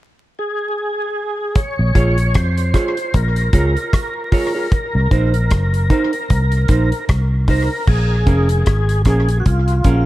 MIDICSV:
0, 0, Header, 1, 6, 480
1, 0, Start_track
1, 0, Key_signature, -5, "minor"
1, 0, Tempo, 789474
1, 948, Time_signature, 4, 2, 24, 8
1, 6115, End_track
2, 0, Start_track
2, 0, Title_t, "Tonewheel organ"
2, 0, Program_c, 0, 16
2, 235, Note_on_c, 0, 68, 89
2, 951, Note_on_c, 0, 73, 103
2, 973, Note_off_c, 0, 68, 0
2, 1427, Note_on_c, 0, 72, 95
2, 1444, Note_off_c, 0, 73, 0
2, 1912, Note_on_c, 0, 70, 93
2, 1922, Note_off_c, 0, 72, 0
2, 2865, Note_off_c, 0, 70, 0
2, 2872, Note_on_c, 0, 70, 78
2, 4285, Note_off_c, 0, 70, 0
2, 4553, Note_on_c, 0, 70, 92
2, 4791, Note_on_c, 0, 68, 98
2, 4797, Note_off_c, 0, 70, 0
2, 5484, Note_off_c, 0, 68, 0
2, 5520, Note_on_c, 0, 68, 77
2, 5704, Note_off_c, 0, 68, 0
2, 5715, Note_on_c, 0, 66, 62
2, 5748, Note_off_c, 0, 66, 0
2, 5757, Note_on_c, 0, 65, 88
2, 6115, Note_off_c, 0, 65, 0
2, 6115, End_track
3, 0, Start_track
3, 0, Title_t, "Clean electric guitar"
3, 0, Program_c, 1, 27
3, 1184, Note_on_c, 1, 65, 73
3, 1191, Note_on_c, 1, 68, 81
3, 1196, Note_on_c, 1, 73, 82
3, 1312, Note_off_c, 1, 65, 0
3, 1315, Note_off_c, 1, 68, 0
3, 1318, Note_off_c, 1, 73, 0
3, 1664, Note_on_c, 1, 65, 76
3, 1668, Note_on_c, 1, 68, 84
3, 1673, Note_on_c, 1, 73, 82
3, 1792, Note_off_c, 1, 65, 0
3, 1794, Note_off_c, 1, 68, 0
3, 1797, Note_off_c, 1, 73, 0
3, 2146, Note_on_c, 1, 65, 84
3, 2151, Note_on_c, 1, 68, 82
3, 2155, Note_on_c, 1, 73, 75
3, 2273, Note_off_c, 1, 65, 0
3, 2275, Note_off_c, 1, 68, 0
3, 2277, Note_off_c, 1, 73, 0
3, 2625, Note_on_c, 1, 65, 82
3, 2629, Note_on_c, 1, 68, 84
3, 2636, Note_on_c, 1, 73, 89
3, 2752, Note_off_c, 1, 65, 0
3, 2754, Note_off_c, 1, 68, 0
3, 2757, Note_off_c, 1, 73, 0
3, 2764, Note_on_c, 1, 73, 63
3, 2769, Note_on_c, 1, 68, 61
3, 2773, Note_on_c, 1, 65, 46
3, 2836, Note_off_c, 1, 73, 0
3, 2839, Note_off_c, 1, 68, 0
3, 2841, Note_off_c, 1, 65, 0
3, 3107, Note_on_c, 1, 63, 83
3, 3111, Note_on_c, 1, 70, 84
3, 3117, Note_on_c, 1, 72, 94
3, 3233, Note_off_c, 1, 63, 0
3, 3235, Note_off_c, 1, 70, 0
3, 3238, Note_off_c, 1, 72, 0
3, 3587, Note_on_c, 1, 63, 87
3, 3593, Note_on_c, 1, 70, 81
3, 3597, Note_on_c, 1, 72, 86
3, 3713, Note_off_c, 1, 63, 0
3, 3716, Note_off_c, 1, 70, 0
3, 3718, Note_off_c, 1, 72, 0
3, 4066, Note_on_c, 1, 63, 74
3, 4070, Note_on_c, 1, 70, 88
3, 4078, Note_on_c, 1, 72, 88
3, 4192, Note_off_c, 1, 63, 0
3, 4194, Note_off_c, 1, 70, 0
3, 4198, Note_off_c, 1, 72, 0
3, 4550, Note_on_c, 1, 63, 72
3, 4556, Note_on_c, 1, 70, 81
3, 4559, Note_on_c, 1, 72, 83
3, 4674, Note_off_c, 1, 63, 0
3, 4677, Note_off_c, 1, 70, 0
3, 4679, Note_off_c, 1, 72, 0
3, 5024, Note_on_c, 1, 61, 74
3, 5029, Note_on_c, 1, 68, 83
3, 5035, Note_on_c, 1, 70, 86
3, 5151, Note_off_c, 1, 61, 0
3, 5154, Note_off_c, 1, 68, 0
3, 5157, Note_off_c, 1, 70, 0
3, 5509, Note_on_c, 1, 61, 76
3, 5514, Note_on_c, 1, 68, 78
3, 5518, Note_on_c, 1, 70, 80
3, 5633, Note_off_c, 1, 61, 0
3, 5635, Note_off_c, 1, 68, 0
3, 5638, Note_off_c, 1, 70, 0
3, 5988, Note_on_c, 1, 61, 80
3, 5993, Note_on_c, 1, 68, 75
3, 5999, Note_on_c, 1, 70, 83
3, 6113, Note_off_c, 1, 61, 0
3, 6115, Note_off_c, 1, 68, 0
3, 6115, Note_off_c, 1, 70, 0
3, 6115, End_track
4, 0, Start_track
4, 0, Title_t, "Fingered electric bass"
4, 0, Program_c, 2, 33
4, 1089, Note_on_c, 2, 34, 96
4, 1183, Note_off_c, 2, 34, 0
4, 1190, Note_on_c, 2, 34, 89
4, 1415, Note_off_c, 2, 34, 0
4, 1432, Note_on_c, 2, 41, 90
4, 1655, Note_off_c, 2, 41, 0
4, 1911, Note_on_c, 2, 34, 100
4, 2135, Note_off_c, 2, 34, 0
4, 2149, Note_on_c, 2, 37, 74
4, 2280, Note_off_c, 2, 37, 0
4, 3010, Note_on_c, 2, 36, 96
4, 3103, Note_off_c, 2, 36, 0
4, 3110, Note_on_c, 2, 34, 87
4, 3334, Note_off_c, 2, 34, 0
4, 3355, Note_on_c, 2, 30, 87
4, 3577, Note_off_c, 2, 30, 0
4, 3834, Note_on_c, 2, 36, 97
4, 4056, Note_off_c, 2, 36, 0
4, 4070, Note_on_c, 2, 34, 75
4, 4200, Note_off_c, 2, 34, 0
4, 4313, Note_on_c, 2, 36, 80
4, 4667, Note_off_c, 2, 36, 0
4, 4789, Note_on_c, 2, 34, 91
4, 5013, Note_off_c, 2, 34, 0
4, 5028, Note_on_c, 2, 29, 84
4, 5252, Note_off_c, 2, 29, 0
4, 5273, Note_on_c, 2, 32, 77
4, 5495, Note_off_c, 2, 32, 0
4, 5506, Note_on_c, 2, 34, 80
4, 5731, Note_off_c, 2, 34, 0
4, 5752, Note_on_c, 2, 36, 90
4, 5974, Note_off_c, 2, 36, 0
4, 5990, Note_on_c, 2, 34, 76
4, 6115, Note_off_c, 2, 34, 0
4, 6115, End_track
5, 0, Start_track
5, 0, Title_t, "Muted clean electric guitar strokes"
5, 1816, Note_on_c, 9, 29, 35
5, 1877, Note_off_c, 9, 29, 0
5, 2284, Note_on_c, 9, 29, 39
5, 2345, Note_off_c, 9, 29, 0
5, 3731, Note_on_c, 9, 29, 46
5, 3792, Note_off_c, 9, 29, 0
5, 4218, Note_on_c, 9, 29, 33
5, 4279, Note_off_c, 9, 29, 0
5, 4688, Note_on_c, 9, 29, 40
5, 4749, Note_off_c, 9, 29, 0
5, 5657, Note_on_c, 9, 29, 29
5, 5718, Note_off_c, 9, 29, 0
5, 6115, End_track
6, 0, Start_track
6, 0, Title_t, "Drums"
6, 945, Note_on_c, 9, 42, 87
6, 947, Note_on_c, 9, 36, 110
6, 1006, Note_off_c, 9, 42, 0
6, 1007, Note_off_c, 9, 36, 0
6, 1187, Note_on_c, 9, 36, 84
6, 1189, Note_on_c, 9, 42, 72
6, 1248, Note_off_c, 9, 36, 0
6, 1249, Note_off_c, 9, 42, 0
6, 1323, Note_on_c, 9, 42, 52
6, 1384, Note_off_c, 9, 42, 0
6, 1425, Note_on_c, 9, 42, 83
6, 1430, Note_on_c, 9, 36, 104
6, 1432, Note_on_c, 9, 37, 112
6, 1486, Note_off_c, 9, 42, 0
6, 1491, Note_off_c, 9, 36, 0
6, 1493, Note_off_c, 9, 37, 0
6, 1565, Note_on_c, 9, 42, 54
6, 1626, Note_off_c, 9, 42, 0
6, 1666, Note_on_c, 9, 36, 83
6, 1666, Note_on_c, 9, 42, 66
6, 1676, Note_on_c, 9, 37, 61
6, 1727, Note_off_c, 9, 36, 0
6, 1727, Note_off_c, 9, 42, 0
6, 1737, Note_off_c, 9, 37, 0
6, 1807, Note_on_c, 9, 42, 50
6, 1868, Note_off_c, 9, 42, 0
6, 1908, Note_on_c, 9, 42, 83
6, 1911, Note_on_c, 9, 36, 94
6, 1969, Note_off_c, 9, 42, 0
6, 1972, Note_off_c, 9, 36, 0
6, 2045, Note_on_c, 9, 42, 50
6, 2106, Note_off_c, 9, 42, 0
6, 2146, Note_on_c, 9, 42, 90
6, 2147, Note_on_c, 9, 36, 85
6, 2207, Note_off_c, 9, 42, 0
6, 2208, Note_off_c, 9, 36, 0
6, 2290, Note_on_c, 9, 42, 50
6, 2351, Note_off_c, 9, 42, 0
6, 2390, Note_on_c, 9, 42, 91
6, 2391, Note_on_c, 9, 36, 105
6, 2395, Note_on_c, 9, 37, 110
6, 2451, Note_off_c, 9, 36, 0
6, 2451, Note_off_c, 9, 42, 0
6, 2456, Note_off_c, 9, 37, 0
6, 2627, Note_on_c, 9, 36, 83
6, 2629, Note_on_c, 9, 46, 68
6, 2688, Note_off_c, 9, 36, 0
6, 2690, Note_off_c, 9, 46, 0
6, 2869, Note_on_c, 9, 36, 108
6, 2870, Note_on_c, 9, 42, 92
6, 2929, Note_off_c, 9, 36, 0
6, 2930, Note_off_c, 9, 42, 0
6, 3109, Note_on_c, 9, 36, 85
6, 3110, Note_on_c, 9, 42, 65
6, 3169, Note_off_c, 9, 36, 0
6, 3171, Note_off_c, 9, 42, 0
6, 3246, Note_on_c, 9, 42, 55
6, 3307, Note_off_c, 9, 42, 0
6, 3347, Note_on_c, 9, 42, 79
6, 3352, Note_on_c, 9, 36, 110
6, 3355, Note_on_c, 9, 37, 110
6, 3408, Note_off_c, 9, 42, 0
6, 3413, Note_off_c, 9, 36, 0
6, 3415, Note_off_c, 9, 37, 0
6, 3488, Note_on_c, 9, 42, 50
6, 3549, Note_off_c, 9, 42, 0
6, 3587, Note_on_c, 9, 36, 90
6, 3587, Note_on_c, 9, 42, 60
6, 3648, Note_off_c, 9, 36, 0
6, 3648, Note_off_c, 9, 42, 0
6, 3726, Note_on_c, 9, 42, 48
6, 3787, Note_off_c, 9, 42, 0
6, 3830, Note_on_c, 9, 42, 82
6, 3832, Note_on_c, 9, 36, 89
6, 3891, Note_off_c, 9, 42, 0
6, 3893, Note_off_c, 9, 36, 0
6, 3963, Note_on_c, 9, 42, 47
6, 4023, Note_off_c, 9, 42, 0
6, 4064, Note_on_c, 9, 42, 88
6, 4067, Note_on_c, 9, 36, 81
6, 4125, Note_off_c, 9, 42, 0
6, 4128, Note_off_c, 9, 36, 0
6, 4208, Note_on_c, 9, 42, 46
6, 4269, Note_off_c, 9, 42, 0
6, 4310, Note_on_c, 9, 42, 89
6, 4312, Note_on_c, 9, 36, 103
6, 4314, Note_on_c, 9, 37, 116
6, 4370, Note_off_c, 9, 42, 0
6, 4372, Note_off_c, 9, 36, 0
6, 4375, Note_off_c, 9, 37, 0
6, 4547, Note_on_c, 9, 36, 88
6, 4547, Note_on_c, 9, 46, 67
6, 4608, Note_off_c, 9, 36, 0
6, 4608, Note_off_c, 9, 46, 0
6, 4786, Note_on_c, 9, 49, 90
6, 4788, Note_on_c, 9, 36, 108
6, 4847, Note_off_c, 9, 49, 0
6, 4849, Note_off_c, 9, 36, 0
6, 5027, Note_on_c, 9, 36, 79
6, 5027, Note_on_c, 9, 42, 71
6, 5087, Note_off_c, 9, 42, 0
6, 5088, Note_off_c, 9, 36, 0
6, 5163, Note_on_c, 9, 42, 55
6, 5223, Note_off_c, 9, 42, 0
6, 5265, Note_on_c, 9, 42, 76
6, 5271, Note_on_c, 9, 36, 105
6, 5273, Note_on_c, 9, 37, 114
6, 5326, Note_off_c, 9, 42, 0
6, 5332, Note_off_c, 9, 36, 0
6, 5333, Note_off_c, 9, 37, 0
6, 5405, Note_on_c, 9, 42, 54
6, 5466, Note_off_c, 9, 42, 0
6, 5502, Note_on_c, 9, 42, 63
6, 5505, Note_on_c, 9, 36, 83
6, 5512, Note_on_c, 9, 37, 59
6, 5563, Note_off_c, 9, 42, 0
6, 5566, Note_off_c, 9, 36, 0
6, 5573, Note_off_c, 9, 37, 0
6, 5646, Note_on_c, 9, 42, 53
6, 5706, Note_off_c, 9, 42, 0
6, 5750, Note_on_c, 9, 42, 77
6, 5751, Note_on_c, 9, 36, 87
6, 5810, Note_off_c, 9, 42, 0
6, 5812, Note_off_c, 9, 36, 0
6, 5884, Note_on_c, 9, 42, 49
6, 5944, Note_off_c, 9, 42, 0
6, 5984, Note_on_c, 9, 42, 80
6, 5986, Note_on_c, 9, 36, 88
6, 6045, Note_off_c, 9, 42, 0
6, 6047, Note_off_c, 9, 36, 0
6, 6115, End_track
0, 0, End_of_file